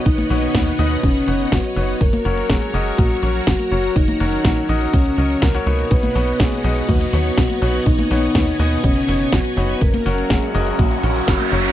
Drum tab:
HH |xxxxxxxxxxxxxxxx|xxxxxxxxxxxxxxxx|xxxxxxxxxxxxxxxx|xxoxxxoxxxoxxxox|
SD |----o-------o---|----o-------o---|----o-------o---|----o-------o---|
CG |-o--o-----------|-o--o---o----o--|-o--o-----------|-o--o---o----o--|
BD |o---o---o---o---|o---o---o---o---|o---o---o---o---|o---o---o---o---|

HH |xxoxxxoxxxoxxxox|xxoxxxoxxxoxxxox|
SD |----o-------o---|----o-------o---|
CG |-o--o-----------|-o--o---o----o--|
BD |o---o---o---o---|o---o---o---o---|